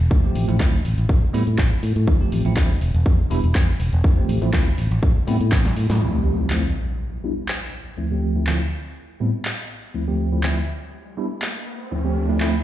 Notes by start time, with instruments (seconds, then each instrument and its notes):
0.10 fingered electric bass D2, tine electric piano F3 A3 C4 E4, kick, closed hi-hat
0.23 tine electric piano F3 A3 C4 G4
0.35 fingered electric bass A1, open hi-hat
0.48 fingered electric bass A1, tine electric piano F3 A3 C4 E4, closed hi-hat
0.60 fingered electric bass D2, tine electric piano F3 A3 C4 E4, kick, clap, closed hi-hat
0.85 fingered electric bass A1, open hi-hat
0.98 fingered electric bass A1, closed hi-hat
1.09 fingered electric bass A1, kick, closed hi-hat
1.33 fingered electric bass A2, tine electric piano G3 B3 C4 E4, open hi-hat
1.47 fingered electric bass A2, closed hi-hat
1.58 fingered electric bass A1, kick, clap
1.83 fingered electric bass A2, open hi-hat
1.96 fingered electric bass A2, closed hi-hat
2.07 tine electric piano F3 A3 C4 E4, kick, closed hi-hat
2.20 tine electric piano F3 A3 C4 G4
2.32 fingered electric bass A1, open hi-hat
2.45 fingered electric bass A1, tine electric piano F3 A3 C4 E4, closed hi-hat
2.57 fingered electric bass D2, tine electric piano F3 A3 C4 E4, kick, clap, closed hi-hat
2.81 fingered electric bass E1, open hi-hat
2.94 fingered electric bass E1, closed hi-hat
3.06 fingered electric bass E2, kick, closed hi-hat
3.30 fingered electric bass E1, tine electric piano G3 B3 D4 E4, open hi-hat
3.44 fingered electric bass E1, closed hi-hat
3.55 fingered electric bass E2, kick, clap
3.80 fingered electric bass E1, open hi-hat
3.93 fingered electric bass E1, closed hi-hat
4.04 fingered electric bass D2, tine electric piano F3 A3 C4 E4, kick, closed hi-hat
4.17 tine electric piano F3 A3 C4 G4
4.29 fingered electric bass A1, open hi-hat
4.41 fingered electric bass A1, tine electric piano F3 A3 C4 E4, closed hi-hat
4.53 fingered electric bass D2, tine electric piano F3 A3 C4 E4, kick, clap, closed hi-hat
4.78 fingered electric bass A1, open hi-hat
4.91 fingered electric bass A1, closed hi-hat
5.03 fingered electric bass A1, kick, closed hi-hat
5.27 fingered electric bass A2, tine electric piano G3 B3 C4 E4, open hi-hat
5.41 fingered electric bass A2, closed hi-hat
5.52 fingered electric bass A1, kick, snare, clap, closed hi-hat
5.65 snare
5.76 fingered electric bass A2, open hi-hat
5.90 fingered electric bass A2, snare, closed hi-hat
6.01 tine electric piano D2 F3 A3 C4 E4, impact
6.14 tine electric piano D2 F3 A3 C4 G4
6.38 tine electric piano D2 F3 A3 C4 E4
6.50 tine electric piano D2 F3 A3 C4 E4, clap
7.24 tine electric piano G3 B3 D4 E4
7.48 clap
7.97 tine electric piano D2 F3 A3 C4 E4
8.11 tine electric piano D2 F3 A3 C4 G4
8.35 tine electric piano D2 F3 A3 C4 E4
8.47 tine electric piano D2 F3 A3 C4 E4, clap
9.20 tine electric piano A2 G3 B3 C4 E4
9.45 clap
9.94 tine electric piano D2 F3 A3 C4 E4, riser
10.07 tine electric piano D2 F3 A3 C4 G4
10.32 tine electric piano D2 F3 A3 C4 E4
10.43 tine electric piano D2 F3 A3 C4 E4, clap
11.17 tine electric piano G3 B3 D4 E4
11.42 clap
11.91 tine electric piano D2 F3 A3 C4 E4
12.04 tine electric piano D2 F3 A3 C4 G4
12.28 tine electric piano D2 F3 A3 C4 E4
12.40 tine electric piano D2 F3 A3 C4 E4, clap